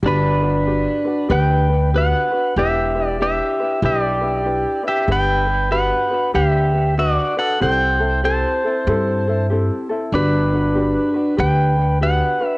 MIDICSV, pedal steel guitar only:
0, 0, Header, 1, 2, 480
1, 0, Start_track
1, 0, Key_signature, 1, "major"
1, 0, Tempo, 630252
1, 25, Time_signature, 4, 2, 24, 8
1, 9579, End_track
2, 0, Start_track
2, 0, Title_t, "Pedal steel guitar"
2, 0, Program_c, 0, 26
2, 46, Note_on_c, 0, 62, 59
2, 58, Note_on_c, 0, 71, 78
2, 967, Note_off_c, 0, 62, 0
2, 989, Note_off_c, 0, 71, 0
2, 999, Note_on_c, 0, 71, 70
2, 1007, Note_on_c, 0, 79, 80
2, 1443, Note_off_c, 0, 71, 0
2, 1491, Note_off_c, 0, 79, 0
2, 1491, Note_on_c, 0, 71, 67
2, 1504, Note_on_c, 0, 78, 84
2, 1929, Note_off_c, 0, 71, 0
2, 1962, Note_on_c, 0, 67, 63
2, 1968, Note_off_c, 0, 78, 0
2, 1971, Note_on_c, 0, 76, 83
2, 2337, Note_off_c, 0, 76, 0
2, 2337, Note_on_c, 0, 74, 83
2, 2405, Note_off_c, 0, 67, 0
2, 2444, Note_off_c, 0, 74, 0
2, 2451, Note_on_c, 0, 67, 69
2, 2454, Note_on_c, 0, 76, 85
2, 2890, Note_off_c, 0, 67, 0
2, 2931, Note_on_c, 0, 67, 67
2, 2933, Note_off_c, 0, 76, 0
2, 2936, Note_on_c, 0, 75, 83
2, 3065, Note_off_c, 0, 75, 0
2, 3065, Note_on_c, 0, 74, 83
2, 3669, Note_off_c, 0, 67, 0
2, 3712, Note_off_c, 0, 74, 0
2, 3715, Note_on_c, 0, 76, 77
2, 3722, Note_on_c, 0, 67, 68
2, 3874, Note_off_c, 0, 67, 0
2, 3887, Note_off_c, 0, 76, 0
2, 3896, Note_on_c, 0, 71, 74
2, 3899, Note_on_c, 0, 79, 105
2, 4332, Note_off_c, 0, 71, 0
2, 4356, Note_on_c, 0, 78, 91
2, 4359, Note_on_c, 0, 71, 75
2, 4378, Note_off_c, 0, 79, 0
2, 4802, Note_off_c, 0, 78, 0
2, 4803, Note_off_c, 0, 71, 0
2, 4837, Note_on_c, 0, 76, 91
2, 4841, Note_on_c, 0, 67, 73
2, 5284, Note_off_c, 0, 67, 0
2, 5324, Note_on_c, 0, 66, 67
2, 5324, Note_on_c, 0, 74, 88
2, 5327, Note_off_c, 0, 76, 0
2, 5594, Note_off_c, 0, 66, 0
2, 5625, Note_off_c, 0, 74, 0
2, 5626, Note_on_c, 0, 78, 80
2, 5632, Note_on_c, 0, 69, 63
2, 5789, Note_off_c, 0, 69, 0
2, 5803, Note_off_c, 0, 78, 0
2, 5805, Note_on_c, 0, 72, 74
2, 5807, Note_on_c, 0, 79, 94
2, 6247, Note_off_c, 0, 72, 0
2, 6283, Note_on_c, 0, 72, 72
2, 6285, Note_on_c, 0, 81, 89
2, 6290, Note_off_c, 0, 79, 0
2, 7204, Note_off_c, 0, 81, 0
2, 7205, Note_off_c, 0, 72, 0
2, 7721, Note_on_c, 0, 62, 68
2, 7730, Note_on_c, 0, 71, 79
2, 8643, Note_off_c, 0, 62, 0
2, 8669, Note_off_c, 0, 71, 0
2, 8678, Note_on_c, 0, 71, 79
2, 8682, Note_on_c, 0, 79, 97
2, 9122, Note_off_c, 0, 71, 0
2, 9124, Note_off_c, 0, 79, 0
2, 9162, Note_on_c, 0, 78, 107
2, 9165, Note_on_c, 0, 71, 78
2, 9497, Note_off_c, 0, 78, 0
2, 9497, Note_on_c, 0, 76, 107
2, 9579, Note_off_c, 0, 71, 0
2, 9579, Note_off_c, 0, 76, 0
2, 9579, End_track
0, 0, End_of_file